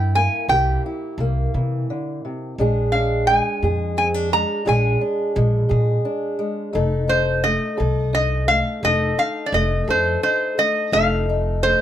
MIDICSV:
0, 0, Header, 1, 4, 480
1, 0, Start_track
1, 0, Tempo, 696056
1, 1779, Time_signature, 12, 3, 24, 8
1, 8148, End_track
2, 0, Start_track
2, 0, Title_t, "Resonator guitar played with a steel bar"
2, 0, Program_c, 0, 25
2, 0, Note_on_c, 0, 79, 84
2, 103, Note_off_c, 0, 79, 0
2, 106, Note_on_c, 0, 80, 85
2, 338, Note_off_c, 0, 80, 0
2, 340, Note_on_c, 0, 79, 88
2, 564, Note_off_c, 0, 79, 0
2, 2013, Note_on_c, 0, 77, 68
2, 2239, Note_off_c, 0, 77, 0
2, 2255, Note_on_c, 0, 80, 91
2, 2735, Note_off_c, 0, 80, 0
2, 2743, Note_on_c, 0, 80, 80
2, 2807, Note_off_c, 0, 80, 0
2, 2987, Note_on_c, 0, 82, 92
2, 3229, Note_off_c, 0, 82, 0
2, 3231, Note_on_c, 0, 80, 78
2, 3448, Note_off_c, 0, 80, 0
2, 4892, Note_on_c, 0, 72, 80
2, 5118, Note_off_c, 0, 72, 0
2, 5128, Note_on_c, 0, 75, 94
2, 5585, Note_off_c, 0, 75, 0
2, 5617, Note_on_c, 0, 75, 93
2, 5845, Note_off_c, 0, 75, 0
2, 5848, Note_on_c, 0, 77, 93
2, 6100, Note_off_c, 0, 77, 0
2, 6100, Note_on_c, 0, 75, 99
2, 6336, Note_on_c, 0, 77, 83
2, 6346, Note_off_c, 0, 75, 0
2, 6526, Note_on_c, 0, 74, 55
2, 6535, Note_off_c, 0, 77, 0
2, 6576, Note_off_c, 0, 74, 0
2, 6580, Note_on_c, 0, 75, 85
2, 6802, Note_off_c, 0, 75, 0
2, 6830, Note_on_c, 0, 72, 79
2, 7047, Note_off_c, 0, 72, 0
2, 7057, Note_on_c, 0, 72, 80
2, 7301, Note_on_c, 0, 75, 88
2, 7304, Note_off_c, 0, 72, 0
2, 7536, Note_off_c, 0, 75, 0
2, 7539, Note_on_c, 0, 77, 98
2, 8020, Note_on_c, 0, 72, 88
2, 8032, Note_off_c, 0, 77, 0
2, 8148, Note_off_c, 0, 72, 0
2, 8148, End_track
3, 0, Start_track
3, 0, Title_t, "Steel-string acoustic guitar"
3, 0, Program_c, 1, 25
3, 0, Note_on_c, 1, 58, 48
3, 0, Note_on_c, 1, 64, 56
3, 108, Note_off_c, 1, 58, 0
3, 110, Note_on_c, 1, 58, 50
3, 342, Note_off_c, 1, 64, 0
3, 344, Note_on_c, 1, 48, 70
3, 352, Note_off_c, 1, 58, 0
3, 354, Note_on_c, 1, 58, 54
3, 358, Note_on_c, 1, 64, 57
3, 362, Note_on_c, 1, 67, 57
3, 583, Note_off_c, 1, 64, 0
3, 592, Note_on_c, 1, 64, 47
3, 774, Note_off_c, 1, 48, 0
3, 821, Note_off_c, 1, 58, 0
3, 830, Note_on_c, 1, 58, 61
3, 1068, Note_on_c, 1, 52, 55
3, 1304, Note_off_c, 1, 52, 0
3, 1311, Note_on_c, 1, 50, 59
3, 1545, Note_off_c, 1, 50, 0
3, 1550, Note_on_c, 1, 48, 54
3, 1755, Note_off_c, 1, 58, 0
3, 1756, Note_off_c, 1, 64, 0
3, 1761, Note_off_c, 1, 67, 0
3, 1782, Note_off_c, 1, 48, 0
3, 1784, Note_on_c, 1, 46, 64
3, 1788, Note_on_c, 1, 56, 59
3, 1793, Note_on_c, 1, 62, 58
3, 1800, Note_on_c, 1, 68, 60
3, 2024, Note_off_c, 1, 62, 0
3, 2031, Note_on_c, 1, 62, 57
3, 2215, Note_off_c, 1, 46, 0
3, 2263, Note_off_c, 1, 56, 0
3, 2270, Note_on_c, 1, 56, 48
3, 2501, Note_off_c, 1, 68, 0
3, 2505, Note_on_c, 1, 46, 67
3, 2509, Note_on_c, 1, 68, 64
3, 2736, Note_off_c, 1, 62, 0
3, 2739, Note_on_c, 1, 60, 53
3, 2857, Note_off_c, 1, 60, 0
3, 2857, Note_on_c, 1, 62, 45
3, 2934, Note_off_c, 1, 46, 0
3, 2975, Note_off_c, 1, 56, 0
3, 2983, Note_on_c, 1, 56, 53
3, 3200, Note_off_c, 1, 56, 0
3, 3205, Note_off_c, 1, 62, 0
3, 3206, Note_on_c, 1, 46, 67
3, 3210, Note_on_c, 1, 56, 61
3, 3212, Note_off_c, 1, 68, 0
3, 3213, Note_on_c, 1, 62, 59
3, 3220, Note_on_c, 1, 68, 64
3, 3448, Note_off_c, 1, 62, 0
3, 3456, Note_on_c, 1, 62, 54
3, 3644, Note_off_c, 1, 46, 0
3, 3685, Note_off_c, 1, 56, 0
3, 3693, Note_on_c, 1, 56, 61
3, 3918, Note_off_c, 1, 68, 0
3, 3922, Note_on_c, 1, 46, 66
3, 3926, Note_on_c, 1, 68, 59
3, 4163, Note_off_c, 1, 62, 0
3, 4171, Note_on_c, 1, 62, 57
3, 4362, Note_off_c, 1, 46, 0
3, 4397, Note_off_c, 1, 56, 0
3, 4405, Note_on_c, 1, 56, 57
3, 4623, Note_off_c, 1, 68, 0
3, 4626, Note_off_c, 1, 62, 0
3, 4639, Note_on_c, 1, 41, 65
3, 4640, Note_off_c, 1, 56, 0
3, 4643, Note_on_c, 1, 57, 61
3, 4652, Note_on_c, 1, 63, 56
3, 4656, Note_on_c, 1, 69, 64
3, 4872, Note_off_c, 1, 63, 0
3, 4881, Note_on_c, 1, 63, 60
3, 5080, Note_off_c, 1, 41, 0
3, 5128, Note_off_c, 1, 57, 0
3, 5136, Note_on_c, 1, 57, 54
3, 5355, Note_off_c, 1, 69, 0
3, 5359, Note_on_c, 1, 41, 71
3, 5364, Note_on_c, 1, 69, 67
3, 5598, Note_off_c, 1, 63, 0
3, 5606, Note_on_c, 1, 63, 51
3, 5800, Note_off_c, 1, 41, 0
3, 5844, Note_off_c, 1, 57, 0
3, 5852, Note_on_c, 1, 57, 53
3, 6087, Note_off_c, 1, 57, 0
3, 6090, Note_off_c, 1, 63, 0
3, 6090, Note_off_c, 1, 69, 0
3, 6092, Note_on_c, 1, 41, 69
3, 6095, Note_on_c, 1, 57, 53
3, 6099, Note_on_c, 1, 63, 57
3, 6105, Note_on_c, 1, 69, 68
3, 6321, Note_off_c, 1, 63, 0
3, 6329, Note_on_c, 1, 63, 51
3, 6527, Note_off_c, 1, 41, 0
3, 6571, Note_off_c, 1, 57, 0
3, 6580, Note_on_c, 1, 57, 58
3, 6810, Note_off_c, 1, 69, 0
3, 6811, Note_on_c, 1, 41, 67
3, 6818, Note_on_c, 1, 69, 63
3, 7048, Note_off_c, 1, 63, 0
3, 7056, Note_on_c, 1, 63, 53
3, 7246, Note_off_c, 1, 41, 0
3, 7286, Note_off_c, 1, 57, 0
3, 7294, Note_on_c, 1, 57, 53
3, 7507, Note_off_c, 1, 57, 0
3, 7508, Note_off_c, 1, 63, 0
3, 7509, Note_off_c, 1, 69, 0
3, 7539, Note_on_c, 1, 41, 65
3, 7543, Note_on_c, 1, 57, 57
3, 7545, Note_on_c, 1, 63, 55
3, 7553, Note_on_c, 1, 69, 66
3, 7780, Note_off_c, 1, 63, 0
3, 7788, Note_on_c, 1, 63, 56
3, 7970, Note_off_c, 1, 41, 0
3, 8011, Note_off_c, 1, 57, 0
3, 8020, Note_on_c, 1, 57, 51
3, 8148, Note_off_c, 1, 57, 0
3, 8148, Note_off_c, 1, 63, 0
3, 8148, Note_off_c, 1, 69, 0
3, 8148, End_track
4, 0, Start_track
4, 0, Title_t, "Upright bass"
4, 0, Program_c, 2, 32
4, 0, Note_on_c, 2, 43, 81
4, 175, Note_off_c, 2, 43, 0
4, 334, Note_on_c, 2, 36, 85
4, 521, Note_off_c, 2, 36, 0
4, 812, Note_on_c, 2, 36, 81
4, 999, Note_off_c, 2, 36, 0
4, 1064, Note_on_c, 2, 48, 75
4, 1247, Note_off_c, 2, 48, 0
4, 1782, Note_on_c, 2, 34, 79
4, 2334, Note_off_c, 2, 34, 0
4, 2500, Note_on_c, 2, 41, 77
4, 3053, Note_off_c, 2, 41, 0
4, 3223, Note_on_c, 2, 34, 94
4, 3405, Note_off_c, 2, 34, 0
4, 3696, Note_on_c, 2, 34, 92
4, 3881, Note_off_c, 2, 34, 0
4, 3936, Note_on_c, 2, 46, 88
4, 4121, Note_off_c, 2, 46, 0
4, 4655, Note_on_c, 2, 29, 85
4, 5209, Note_off_c, 2, 29, 0
4, 5377, Note_on_c, 2, 36, 82
4, 5931, Note_off_c, 2, 36, 0
4, 6087, Note_on_c, 2, 29, 84
4, 6276, Note_off_c, 2, 29, 0
4, 6568, Note_on_c, 2, 29, 91
4, 6756, Note_off_c, 2, 29, 0
4, 6811, Note_on_c, 2, 41, 81
4, 6998, Note_off_c, 2, 41, 0
4, 7533, Note_on_c, 2, 29, 89
4, 8088, Note_off_c, 2, 29, 0
4, 8148, End_track
0, 0, End_of_file